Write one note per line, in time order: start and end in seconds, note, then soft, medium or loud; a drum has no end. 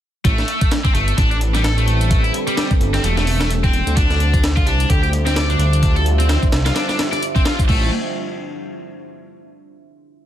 0.25 0.43 A1 loud
0.25 3.93 G3 medium
0.25 0.70 A3 loud
0.25 3.93 C4 medium
0.25 7.65 D4 medium
0.25 3.93 A4 medium
0.25 2.09 B4 medium
0.25 kick loud
0.25 closed hi-hat medium
0.38 snare soft
0.38 closed hi-hat soft
0.48 closed hi-hat medium
0.61 kick medium
0.61 closed hi-hat medium
0.71 snare loud
0.71 closed hi-hat medium
0.84 0.93 C4 medium
0.84 kick medium
0.84 closed hi-hat soft
0.94 1.13 G1 medium
0.94 1.17 A3 medium
0.94 closed hi-hat medium
1.08 closed hi-hat medium
1.17 2.30 A1 medium
1.17 1.30 D4 loud
1.17 kick loud
1.17 closed hi-hat medium
1.31 1.36 D4 loud
1.31 closed hi-hat soft
1.41 closed hi-hat medium
1.54 1.63 G3 medium
1.54 snare soft
1.54 closed hi-hat medium
1.64 1.76 A4 loud
1.64 snare loud
1.64 closed hi-hat medium
1.77 1.85 A3 loud
1.77 closed hi-hat soft
1.87 2.23 A3 medium
1.87 closed hi-hat medium
2.01 closed hi-hat medium
2.10 7.65 C5 medium
2.10 kick loud
2.10 closed hi-hat medium
2.24 2.32 E4 loud
2.24 closed hi-hat soft
2.34 closed hi-hat medium
2.47 2.56 G3 medium
2.47 closed hi-hat medium
2.57 2.68 G3 medium
2.57 snare loud
2.57 closed hi-hat medium
2.71 kick medium
2.71 closed hi-hat soft
2.80 2.99 G1 medium
2.80 closed hi-hat medium
2.94 3.03 C4 medium
2.94 snare medium
2.94 closed hi-hat medium
3.03 3.82 E1 medium
3.03 3.15 A3 medium
3.03 closed hi-hat medium
3.17 3.39 A3 loud
3.17 snare medium
3.17 closed hi-hat soft
3.27 open hi-hat medium
3.40 3.50 A3 loud
3.40 snare loud
3.40 closed hi-hat medium
3.50 closed hi-hat medium
3.64 3.96 C4 medium
3.64 kick loud
3.64 closed hi-hat soft
3.73 closed hi-hat medium
3.87 4.63 D2 medium
3.87 closed hi-hat medium
3.96 7.65 G3 medium
3.96 4.42 D4 loud
3.96 7.65 F4 medium
3.96 7.65 E5 medium
3.96 kick loud
3.96 closed hi-hat medium
4.10 snare soft
4.10 closed hi-hat soft
4.20 closed hi-hat medium
4.34 kick medium
4.34 closed hi-hat medium
4.44 snare loud
4.44 closed hi-hat medium
4.56 4.65 F4 loud
4.56 kick medium
4.56 closed hi-hat soft
4.66 4.85 C2 medium
4.66 4.89 D4 medium
4.66 closed hi-hat medium
4.80 closed hi-hat medium
4.90 5.56 D2 loud
4.90 5.02 G4 loud
4.90 kick loud
4.90 closed hi-hat medium
5.03 5.08 G4 loud
5.03 closed hi-hat soft
5.13 closed hi-hat medium
5.26 5.35 C4 medium
5.26 snare soft
5.26 closed hi-hat medium
5.36 5.48 D5 loud
5.36 snare loud
5.36 closed hi-hat medium
5.50 5.58 D4 loud
5.50 closed hi-hat soft
5.59 6.37 D2 medium
5.59 5.95 D4 medium
5.59 closed hi-hat medium
5.73 closed hi-hat medium
5.83 kick loud
5.83 closed hi-hat medium
5.96 6.04 A4 loud
5.96 closed hi-hat soft
6.06 closed hi-hat medium
6.19 6.28 C4 medium
6.19 closed hi-hat medium
6.29 6.40 C4 medium
6.29 snare loud
6.29 closed hi-hat medium
6.43 kick medium
6.43 closed hi-hat soft
6.52 6.71 C2 medium
6.52 snare loud
6.52 closed hi-hat medium
6.65 6.75 F4 medium
6.65 snare loud
6.65 closed hi-hat medium
6.75 6.86 D4 medium
6.75 snare loud
6.75 closed hi-hat medium
6.75 closed hi-hat soft
6.88 6.98 D4 loud
6.88 snare medium
6.88 closed hi-hat soft
6.99 snare loud
6.99 closed hi-hat medium
7.12 7.21 D5 medium
7.12 snare soft
7.12 closed hi-hat medium
7.23 closed hi-hat medium
7.35 7.43 C4 medium
7.35 kick medium
7.35 closed hi-hat soft
7.45 7.56 F4 loud
7.45 snare loud
7.45 closed hi-hat medium
7.59 kick medium
7.59 closed hi-hat medium
7.68 7.90 A1 loud
7.68 7.90 A3 medium
7.68 kick loud
7.68 crash medium